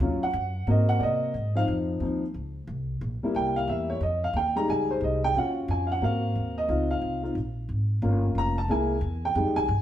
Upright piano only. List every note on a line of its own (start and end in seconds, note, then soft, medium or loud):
0.01 0.26 F#3 medium
0.01 0.26 C#4 medium
0.01 0.27 F4 medium
0.23 0.65 F#5 medium
0.68 1.31 A#3 medium
0.68 1.31 C4 soft
0.68 1.32 F#4 medium
0.68 0.90 D#5 medium
0.89 1.01 F#5 medium
0.99 1.02 D5 medium
1.03 1.53 D#5 medium
1.55 2.00 F3 medium
1.55 2.00 C4 soft
1.55 2.01 D#4 medium
1.55 1.64 F5 loud
2.02 2.21 F3 soft
2.02 2.21 C4 soft
2.02 2.21 D#4 medium
3.23 3.98 G3 medium
3.23 3.99 A#3 soft
3.23 3.99 E4 medium
3.36 3.56 G5 medium
3.56 3.68 F5 medium
3.69 3.90 E5 medium
3.90 4.02 C#5 medium
4.03 4.23 D#5 medium
4.24 4.36 F5 medium
4.37 4.57 G5 medium
4.56 5.31 G3 medium
4.56 5.32 G#3 soft
4.56 5.32 D#4 medium
4.56 4.68 A#5 medium
4.70 4.90 G#5 medium
4.91 5.02 C5 medium
5.04 5.24 D#5 medium
5.24 5.36 G5 loud
5.36 5.99 C#4 soft
5.36 6.00 F4 medium
5.36 6.00 F#4 soft
5.36 5.50 F#5 medium
5.71 5.91 G#5 medium
5.87 5.89 F5 medium
5.92 6.03 F#5 medium
6.02 6.66 A#3 medium
6.02 6.66 C4 medium
6.02 6.66 F#4 medium
6.02 6.54 F5 medium
6.58 6.89 D#5 medium
6.68 7.21 C4 medium
6.68 7.21 D#4 soft
6.68 7.22 F4 medium
6.91 7.33 F5 medium
7.23 7.34 C4 soft
7.23 7.35 D#4 soft
7.23 7.35 F4 medium
8.03 8.55 A#3 medium
8.03 8.55 C#4 soft
8.03 8.55 F4 medium
8.38 8.58 A#5 medium
8.58 8.70 A5 medium
8.69 8.94 G#3 medium
8.69 8.95 A#3 medium
8.69 8.95 E4 medium
8.69 9.21 G#5 medium
9.25 9.56 G5 medium
9.36 9.61 G3 soft
9.36 9.61 G#3 soft
9.36 9.61 D#4 medium
9.56 9.82 G#5 loud